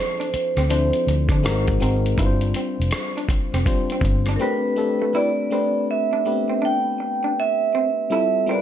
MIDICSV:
0, 0, Header, 1, 8, 480
1, 0, Start_track
1, 0, Key_signature, 0, "minor"
1, 0, Tempo, 740741
1, 1411, Time_signature, 4, 2, 24, 8
1, 5584, End_track
2, 0, Start_track
2, 0, Title_t, "Vibraphone"
2, 0, Program_c, 0, 11
2, 0, Note_on_c, 0, 72, 85
2, 2825, Note_off_c, 0, 72, 0
2, 2826, Note_on_c, 0, 70, 52
2, 2855, Note_off_c, 0, 70, 0
2, 2864, Note_on_c, 0, 71, 72
2, 3343, Note_on_c, 0, 74, 74
2, 3351, Note_off_c, 0, 71, 0
2, 3791, Note_off_c, 0, 74, 0
2, 3828, Note_on_c, 0, 76, 78
2, 4310, Note_on_c, 0, 79, 83
2, 4313, Note_off_c, 0, 76, 0
2, 4793, Note_on_c, 0, 76, 89
2, 4794, Note_off_c, 0, 79, 0
2, 5263, Note_off_c, 0, 76, 0
2, 5271, Note_on_c, 0, 76, 79
2, 5484, Note_off_c, 0, 76, 0
2, 5514, Note_on_c, 0, 74, 73
2, 5584, Note_off_c, 0, 74, 0
2, 5584, End_track
3, 0, Start_track
3, 0, Title_t, "FM electric piano"
3, 0, Program_c, 1, 5
3, 0, Control_c, 1, 64, 127
3, 0, Note_on_c, 1, 53, 63
3, 0, Note_on_c, 1, 60, 59
3, 0, Note_on_c, 1, 62, 60
3, 0, Note_on_c, 1, 64, 58
3, 0, Note_on_c, 1, 69, 73
3, 397, Note_off_c, 1, 53, 0
3, 400, Note_off_c, 1, 60, 0
3, 402, Note_off_c, 1, 62, 0
3, 404, Note_off_c, 1, 64, 0
3, 405, Note_off_c, 1, 69, 0
3, 448, Note_on_c, 1, 53, 75
3, 451, Note_on_c, 1, 60, 77
3, 452, Note_on_c, 1, 62, 68
3, 456, Note_on_c, 1, 64, 63
3, 460, Note_on_c, 1, 72, 81
3, 923, Note_off_c, 1, 60, 0
3, 928, Note_on_c, 1, 56, 76
3, 929, Note_off_c, 1, 53, 0
3, 931, Note_off_c, 1, 62, 0
3, 931, Note_on_c, 1, 60, 68
3, 933, Note_off_c, 1, 64, 0
3, 935, Note_off_c, 1, 72, 0
3, 935, Note_on_c, 1, 63, 73
3, 937, Note_on_c, 1, 66, 74
3, 939, Note_on_c, 1, 70, 90
3, 940, Control_c, 1, 64, 0
3, 1032, Control_c, 1, 64, 127
3, 1157, Note_off_c, 1, 56, 0
3, 1158, Note_off_c, 1, 60, 0
3, 1160, Note_off_c, 1, 63, 0
3, 1161, Note_off_c, 1, 66, 0
3, 1162, Note_off_c, 1, 70, 0
3, 1167, Note_on_c, 1, 56, 77
3, 1170, Note_on_c, 1, 60, 76
3, 1171, Note_on_c, 1, 63, 65
3, 1176, Note_on_c, 1, 66, 69
3, 1179, Note_on_c, 1, 70, 85
3, 1396, Note_off_c, 1, 56, 0
3, 1398, Note_off_c, 1, 60, 0
3, 1398, Note_off_c, 1, 63, 0
3, 1400, Note_off_c, 1, 66, 0
3, 1402, Note_off_c, 1, 70, 0
3, 1407, Note_on_c, 1, 55, 72
3, 1412, Note_on_c, 1, 60, 68
3, 1414, Note_on_c, 1, 62, 75
3, 1419, Note_on_c, 1, 65, 72
3, 1420, Control_c, 1, 64, 0
3, 1421, Note_on_c, 1, 71, 65
3, 1464, Note_on_c, 1, 72, 86
3, 1469, Note_off_c, 1, 71, 0
3, 1523, Control_c, 1, 64, 127
3, 2317, Note_off_c, 1, 55, 0
3, 2320, Note_off_c, 1, 60, 0
3, 2321, Note_off_c, 1, 62, 0
3, 2323, Note_off_c, 1, 65, 0
3, 2346, Note_off_c, 1, 72, 0
3, 2367, Note_on_c, 1, 55, 68
3, 2369, Note_on_c, 1, 60, 67
3, 2371, Note_on_c, 1, 62, 71
3, 2375, Note_on_c, 1, 65, 67
3, 2379, Note_on_c, 1, 72, 82
3, 2841, Note_off_c, 1, 60, 0
3, 2846, Note_off_c, 1, 62, 0
3, 2846, Note_on_c, 1, 57, 78
3, 2849, Note_off_c, 1, 55, 0
3, 2849, Note_on_c, 1, 60, 79
3, 2853, Note_off_c, 1, 65, 0
3, 2854, Note_on_c, 1, 62, 69
3, 2855, Note_off_c, 1, 72, 0
3, 2856, Note_on_c, 1, 67, 78
3, 2858, Control_c, 1, 64, 0
3, 2860, Note_on_c, 1, 71, 92
3, 2958, Control_c, 1, 64, 127
3, 3075, Note_off_c, 1, 57, 0
3, 3077, Note_off_c, 1, 60, 0
3, 3079, Note_off_c, 1, 62, 0
3, 3080, Note_off_c, 1, 67, 0
3, 3083, Note_off_c, 1, 71, 0
3, 3085, Note_on_c, 1, 57, 76
3, 3087, Note_on_c, 1, 60, 68
3, 3092, Note_on_c, 1, 62, 69
3, 3093, Note_on_c, 1, 67, 68
3, 3097, Note_on_c, 1, 69, 84
3, 3315, Note_off_c, 1, 57, 0
3, 3316, Note_off_c, 1, 60, 0
3, 3318, Note_off_c, 1, 62, 0
3, 3319, Note_off_c, 1, 67, 0
3, 3321, Note_off_c, 1, 69, 0
3, 3328, Note_on_c, 1, 57, 57
3, 3331, Note_on_c, 1, 60, 55
3, 3334, Note_on_c, 1, 62, 63
3, 3338, Control_c, 1, 64, 0
3, 3338, Note_on_c, 1, 67, 58
3, 3341, Note_on_c, 1, 71, 64
3, 3453, Control_c, 1, 64, 127
3, 3556, Note_off_c, 1, 57, 0
3, 3558, Note_off_c, 1, 60, 0
3, 3559, Note_off_c, 1, 62, 0
3, 3562, Note_off_c, 1, 67, 0
3, 3563, Note_off_c, 1, 71, 0
3, 3569, Note_on_c, 1, 57, 68
3, 3572, Note_on_c, 1, 60, 60
3, 3576, Note_on_c, 1, 62, 61
3, 3579, Note_on_c, 1, 67, 60
3, 3583, Note_on_c, 1, 71, 74
3, 4024, Note_off_c, 1, 57, 0
3, 4026, Note_off_c, 1, 60, 0
3, 4028, Note_off_c, 1, 62, 0
3, 4029, Note_off_c, 1, 67, 0
3, 4031, Note_off_c, 1, 71, 0
3, 4052, Note_on_c, 1, 57, 68
3, 4055, Note_on_c, 1, 59, 47
3, 4059, Note_on_c, 1, 62, 61
3, 4059, Note_on_c, 1, 67, 64
3, 4063, Note_on_c, 1, 71, 64
3, 4096, Note_on_c, 1, 60, 60
3, 4106, Note_off_c, 1, 59, 0
3, 4960, Note_off_c, 1, 57, 0
3, 4963, Note_off_c, 1, 62, 0
3, 4964, Note_off_c, 1, 67, 0
3, 4965, Note_off_c, 1, 71, 0
3, 4982, Note_off_c, 1, 60, 0
3, 5248, Note_on_c, 1, 55, 72
3, 5252, Note_on_c, 1, 60, 60
3, 5252, Note_on_c, 1, 64, 59
3, 5257, Note_on_c, 1, 65, 59
3, 5259, Control_c, 1, 64, 0
3, 5260, Note_on_c, 1, 69, 72
3, 5370, Control_c, 1, 64, 127
3, 5476, Note_off_c, 1, 55, 0
3, 5478, Note_off_c, 1, 60, 0
3, 5479, Note_off_c, 1, 64, 0
3, 5481, Note_off_c, 1, 65, 0
3, 5482, Note_off_c, 1, 69, 0
3, 5485, Note_on_c, 1, 55, 72
3, 5490, Note_on_c, 1, 60, 58
3, 5490, Note_on_c, 1, 64, 59
3, 5496, Note_on_c, 1, 65, 63
3, 5499, Note_on_c, 1, 70, 59
3, 5539, Note_on_c, 1, 71, 78
3, 5549, Note_off_c, 1, 70, 0
3, 5584, Note_off_c, 1, 55, 0
3, 5584, Note_off_c, 1, 60, 0
3, 5584, Note_off_c, 1, 64, 0
3, 5584, Note_off_c, 1, 65, 0
3, 5584, Note_off_c, 1, 71, 0
3, 5584, End_track
4, 0, Start_track
4, 0, Title_t, "Clean electric guitar"
4, 0, Program_c, 2, 27
4, 129, Note_on_c, 2, 62, 69
4, 182, Note_off_c, 2, 62, 0
4, 376, Note_on_c, 2, 60, 60
4, 427, Note_off_c, 2, 60, 0
4, 459, Note_on_c, 2, 62, 78
4, 553, Note_off_c, 2, 62, 0
4, 853, Note_on_c, 2, 62, 68
4, 905, Note_off_c, 2, 62, 0
4, 1180, Note_on_c, 2, 60, 72
4, 1273, Note_off_c, 2, 60, 0
4, 1416, Note_on_c, 2, 64, 65
4, 1510, Note_off_c, 2, 64, 0
4, 1661, Note_on_c, 2, 60, 65
4, 1754, Note_off_c, 2, 60, 0
4, 2056, Note_on_c, 2, 62, 67
4, 2107, Note_off_c, 2, 62, 0
4, 2295, Note_on_c, 2, 60, 65
4, 2346, Note_off_c, 2, 60, 0
4, 2541, Note_on_c, 2, 60, 62
4, 2590, Note_off_c, 2, 60, 0
4, 2778, Note_on_c, 2, 62, 68
4, 2828, Note_off_c, 2, 62, 0
4, 2856, Note_on_c, 2, 60, 66
4, 2950, Note_off_c, 2, 60, 0
4, 3251, Note_on_c, 2, 57, 55
4, 3303, Note_off_c, 2, 57, 0
4, 3335, Note_on_c, 2, 64, 86
4, 3430, Note_off_c, 2, 64, 0
4, 3580, Note_on_c, 2, 60, 65
4, 3673, Note_off_c, 2, 60, 0
4, 3972, Note_on_c, 2, 62, 72
4, 4024, Note_off_c, 2, 62, 0
4, 4209, Note_on_c, 2, 60, 62
4, 4262, Note_off_c, 2, 60, 0
4, 4289, Note_on_c, 2, 62, 76
4, 4386, Note_off_c, 2, 62, 0
4, 4693, Note_on_c, 2, 62, 66
4, 4745, Note_off_c, 2, 62, 0
4, 5021, Note_on_c, 2, 60, 76
4, 5114, Note_off_c, 2, 60, 0
4, 5264, Note_on_c, 2, 64, 72
4, 5356, Note_off_c, 2, 64, 0
4, 5503, Note_on_c, 2, 60, 72
4, 5584, Note_off_c, 2, 60, 0
4, 5584, End_track
5, 0, Start_track
5, 0, Title_t, "Fingered electric bass"
5, 0, Program_c, 3, 33
5, 368, Note_on_c, 3, 38, 77
5, 584, Note_off_c, 3, 38, 0
5, 694, Note_on_c, 3, 38, 72
5, 832, Note_off_c, 3, 38, 0
5, 837, Note_on_c, 3, 50, 73
5, 939, Note_on_c, 3, 32, 87
5, 949, Note_off_c, 3, 50, 0
5, 1153, Note_off_c, 3, 32, 0
5, 1178, Note_on_c, 3, 32, 86
5, 1393, Note_off_c, 3, 32, 0
5, 1415, Note_on_c, 3, 31, 86
5, 1631, Note_off_c, 3, 31, 0
5, 1811, Note_on_c, 3, 29, 76
5, 1887, Note_off_c, 3, 29, 0
5, 2292, Note_on_c, 3, 29, 78
5, 2367, Note_off_c, 3, 29, 0
5, 2604, Note_on_c, 3, 31, 79
5, 2825, Note_off_c, 3, 31, 0
5, 5584, End_track
6, 0, Start_track
6, 0, Title_t, "Muted clean electric guitar strokes"
6, 219, Note_on_c, 9, 29, 39
6, 284, Note_off_c, 9, 29, 0
6, 704, Note_on_c, 9, 29, 37
6, 769, Note_off_c, 9, 29, 0
6, 2142, Note_on_c, 9, 29, 43
6, 2207, Note_off_c, 9, 29, 0
6, 2622, Note_on_c, 9, 29, 37
6, 2687, Note_off_c, 9, 29, 0
6, 3105, Note_on_c, 9, 29, 39
6, 3170, Note_off_c, 9, 29, 0
6, 4056, Note_on_c, 9, 29, 43
6, 4121, Note_off_c, 9, 29, 0
6, 4537, Note_on_c, 9, 29, 38
6, 4602, Note_off_c, 9, 29, 0
6, 5584, End_track
7, 0, Start_track
7, 0, Title_t, "Muted fingered electric bass strokes"
7, 218, Note_on_c, 9, 29, 41
7, 283, Note_off_c, 9, 29, 0
7, 2133, Note_on_c, 9, 29, 45
7, 2197, Note_off_c, 9, 29, 0
7, 5584, End_track
8, 0, Start_track
8, 0, Title_t, "Drums"
8, 136, Note_on_c, 9, 42, 39
8, 201, Note_off_c, 9, 42, 0
8, 218, Note_on_c, 9, 42, 55
8, 283, Note_off_c, 9, 42, 0
8, 368, Note_on_c, 9, 42, 43
8, 371, Note_on_c, 9, 37, 32
8, 433, Note_off_c, 9, 42, 0
8, 436, Note_off_c, 9, 37, 0
8, 456, Note_on_c, 9, 42, 76
8, 521, Note_off_c, 9, 42, 0
8, 605, Note_on_c, 9, 42, 40
8, 669, Note_off_c, 9, 42, 0
8, 703, Note_on_c, 9, 42, 65
8, 767, Note_off_c, 9, 42, 0
8, 834, Note_on_c, 9, 36, 82
8, 839, Note_on_c, 9, 42, 41
8, 844, Note_on_c, 9, 37, 32
8, 899, Note_off_c, 9, 36, 0
8, 904, Note_off_c, 9, 42, 0
8, 909, Note_off_c, 9, 37, 0
8, 944, Note_on_c, 9, 42, 69
8, 945, Note_on_c, 9, 37, 97
8, 1009, Note_off_c, 9, 42, 0
8, 1010, Note_off_c, 9, 37, 0
8, 1086, Note_on_c, 9, 42, 40
8, 1089, Note_on_c, 9, 36, 83
8, 1150, Note_off_c, 9, 42, 0
8, 1154, Note_off_c, 9, 36, 0
8, 1182, Note_on_c, 9, 42, 58
8, 1247, Note_off_c, 9, 42, 0
8, 1334, Note_on_c, 9, 42, 39
8, 1399, Note_off_c, 9, 42, 0
8, 1411, Note_on_c, 9, 36, 106
8, 1419, Note_on_c, 9, 42, 74
8, 1476, Note_off_c, 9, 36, 0
8, 1484, Note_off_c, 9, 42, 0
8, 1563, Note_on_c, 9, 42, 35
8, 1627, Note_off_c, 9, 42, 0
8, 1648, Note_on_c, 9, 42, 65
8, 1713, Note_off_c, 9, 42, 0
8, 1825, Note_on_c, 9, 42, 38
8, 1886, Note_off_c, 9, 42, 0
8, 1886, Note_on_c, 9, 42, 55
8, 1896, Note_on_c, 9, 37, 87
8, 1950, Note_off_c, 9, 42, 0
8, 1960, Note_off_c, 9, 37, 0
8, 2059, Note_on_c, 9, 42, 43
8, 2124, Note_off_c, 9, 42, 0
8, 2129, Note_on_c, 9, 36, 78
8, 2138, Note_on_c, 9, 42, 50
8, 2194, Note_off_c, 9, 36, 0
8, 2203, Note_off_c, 9, 42, 0
8, 2294, Note_on_c, 9, 42, 42
8, 2297, Note_on_c, 9, 37, 29
8, 2359, Note_off_c, 9, 42, 0
8, 2361, Note_off_c, 9, 37, 0
8, 2372, Note_on_c, 9, 36, 83
8, 2378, Note_on_c, 9, 42, 71
8, 2437, Note_off_c, 9, 36, 0
8, 2443, Note_off_c, 9, 42, 0
8, 2526, Note_on_c, 9, 42, 40
8, 2591, Note_off_c, 9, 42, 0
8, 2600, Note_on_c, 9, 36, 90
8, 2623, Note_on_c, 9, 42, 61
8, 2665, Note_off_c, 9, 36, 0
8, 2688, Note_off_c, 9, 42, 0
8, 2759, Note_on_c, 9, 42, 39
8, 2764, Note_on_c, 9, 37, 31
8, 2823, Note_off_c, 9, 42, 0
8, 2828, Note_off_c, 9, 37, 0
8, 5584, End_track
0, 0, End_of_file